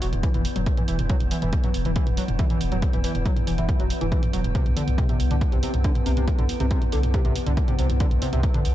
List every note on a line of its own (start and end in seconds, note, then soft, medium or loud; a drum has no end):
0.00 0.12 E1 loud
0.00 8.75 E3 medium
0.00 0.07 F#3 medium
0.00 8.75 B3 medium
0.00 open hi-hat loud
0.13 0.23 E1 medium
0.13 closed hi-hat medium
0.13 mid tom medium
0.23 0.29 E3 medium
0.23 kick loud
0.23 closed hi-hat medium
0.34 0.45 E1 medium
0.34 0.42 E3 medium
0.34 closed hi-hat medium
0.34 mid tom medium
0.45 open hi-hat loud
0.56 0.66 E1 medium
0.56 0.61 F#3 medium
0.56 closed hi-hat medium
0.56 mid tom medium
0.66 kick loud
0.66 closed hi-hat medium
0.77 0.83 E3 medium
0.77 closed hi-hat medium
0.77 mid tom medium
0.88 0.99 E1 loud
0.88 0.96 E3 medium
0.88 open hi-hat loud
0.99 1.10 E1 medium
0.99 closed hi-hat medium
0.99 mid tom medium
1.10 1.15 F#3 medium
1.10 kick loud
1.10 closed hi-hat medium
1.20 1.31 E1 medium
1.20 closed hi-hat medium
1.20 mid tom medium
1.31 1.37 E3 medium
1.31 open hi-hat loud
1.42 1.53 E1 medium
1.42 1.50 E3 medium
1.42 closed hi-hat medium
1.42 mid tom medium
1.53 kick loud
1.53 closed hi-hat medium
1.64 1.69 F#3 medium
1.64 closed hi-hat medium
1.64 mid tom medium
1.74 1.85 E1 loud
1.74 open hi-hat loud
1.85 1.96 E1 medium
1.85 1.91 E3 medium
1.85 closed hi-hat medium
1.85 mid tom medium
1.96 2.04 E3 medium
1.96 kick loud
1.96 closed hi-hat medium
2.07 2.17 E1 medium
2.07 closed hi-hat medium
2.07 mid tom medium
2.17 2.23 F#3 medium
2.17 open hi-hat loud
2.28 2.39 E1 medium
2.28 closed hi-hat medium
2.28 mid tom medium
2.39 2.45 E3 medium
2.39 kick loud
2.39 closed hi-hat medium
2.50 2.58 E3 medium
2.50 closed hi-hat medium
2.50 mid tom medium
2.61 2.71 E1 loud
2.61 open hi-hat loud
2.72 2.82 E1 medium
2.72 2.77 F#3 medium
2.72 closed hi-hat medium
2.72 mid tom medium
2.82 kick loud
2.82 closed hi-hat medium
2.93 3.04 E1 medium
2.93 2.99 E3 medium
2.93 closed hi-hat medium
2.93 mid tom medium
3.04 3.12 E3 medium
3.04 open hi-hat loud
3.15 3.25 E1 medium
3.15 closed hi-hat medium
3.15 mid tom medium
3.25 3.31 F#3 medium
3.25 kick loud
3.25 closed hi-hat medium
3.36 closed hi-hat soft
3.36 mid tom medium
3.47 3.58 E1 loud
3.47 3.52 E3 medium
3.47 open hi-hat medium
3.58 3.69 E1 medium
3.58 3.66 E3 medium
3.58 closed hi-hat soft
3.58 mid tom medium
3.69 kick loud
3.69 closed hi-hat medium
3.79 3.90 E1 medium
3.79 3.85 F#3 medium
3.79 closed hi-hat medium
3.79 mid tom medium
3.90 open hi-hat loud
4.01 4.12 E1 medium
4.01 4.06 E3 medium
4.01 closed hi-hat medium
4.01 mid tom medium
4.12 4.20 E3 medium
4.12 kick loud
4.12 closed hi-hat medium
4.23 closed hi-hat medium
4.23 mid tom medium
4.33 4.44 E1 loud
4.33 4.39 F#3 medium
4.33 open hi-hat medium
4.44 4.55 E1 medium
4.44 closed hi-hat medium
4.44 mid tom medium
4.55 4.63 C3 medium
4.55 kick loud
4.55 closed hi-hat medium
4.66 4.76 C2 medium
4.66 closed hi-hat medium
4.66 mid tom medium
4.76 4.82 D3 medium
4.76 open hi-hat loud
4.87 4.98 C2 medium
4.87 closed hi-hat medium
4.87 mid tom medium
4.98 5.03 C3 medium
4.98 kick loud
4.98 closed hi-hat medium
5.09 5.17 C3 medium
5.09 closed hi-hat soft
5.09 mid tom medium
5.20 5.30 C2 loud
5.20 open hi-hat medium
5.31 5.41 C2 medium
5.31 5.36 D3 medium
5.31 closed hi-hat soft
5.31 mid tom medium
5.41 kick loud
5.41 closed hi-hat medium
5.52 5.63 C2 medium
5.52 5.58 C3 medium
5.52 closed hi-hat medium
5.52 mid tom medium
5.63 5.71 C3 medium
5.63 open hi-hat loud
5.74 5.84 C2 medium
5.74 closed hi-hat soft
5.74 mid tom medium
5.84 5.90 D3 medium
5.84 kick loud
5.84 closed hi-hat medium
5.95 closed hi-hat soft
5.95 mid tom medium
6.06 6.17 C2 loud
6.06 6.11 C3 medium
6.06 open hi-hat medium
6.17 6.27 C2 medium
6.17 6.25 C3 medium
6.17 closed hi-hat soft
6.17 mid tom medium
6.28 kick loud
6.28 closed hi-hat medium
6.38 6.49 C2 medium
6.38 6.44 D3 medium
6.38 closed hi-hat medium
6.38 mid tom loud
6.49 open hi-hat loud
6.60 6.71 C2 medium
6.60 6.65 C3 medium
6.60 closed hi-hat medium
6.60 mid tom medium
6.71 6.79 C3 medium
6.71 kick loud
6.71 closed hi-hat medium
6.82 closed hi-hat soft
6.82 mid tom medium
6.92 7.03 C2 loud
6.92 6.98 D3 medium
6.92 open hi-hat medium
7.03 7.14 C2 medium
7.03 closed hi-hat soft
7.03 mid tom loud
7.14 7.19 C3 medium
7.14 kick loud
7.14 closed hi-hat medium
7.25 7.35 C2 medium
7.25 7.33 C3 medium
7.25 closed hi-hat soft
7.25 mid tom loud
7.36 open hi-hat loud
7.46 7.57 C2 medium
7.46 7.52 D3 medium
7.46 closed hi-hat medium
7.46 mid tom medium
7.57 kick loud
7.57 closed hi-hat medium
7.68 7.73 C3 medium
7.68 closed hi-hat medium
7.68 mid tom medium
7.79 7.89 C2 loud
7.79 7.87 C3 medium
7.79 open hi-hat medium
7.90 8.00 C2 medium
7.90 closed hi-hat medium
7.90 mid tom medium
8.00 8.06 D3 medium
8.00 kick loud
8.00 closed hi-hat medium
8.00 riser medium
8.11 8.22 C2 medium
8.11 closed hi-hat medium
8.11 mid tom medium
8.22 8.27 C3 medium
8.22 open hi-hat loud
8.33 8.43 C2 medium
8.33 8.41 C3 medium
8.33 closed hi-hat medium
8.33 mid tom loud
8.43 kick loud
8.43 closed hi-hat medium
8.54 8.60 D3 medium
8.54 closed hi-hat soft
8.54 mid tom loud
8.65 8.75 C2 loud
8.65 open hi-hat medium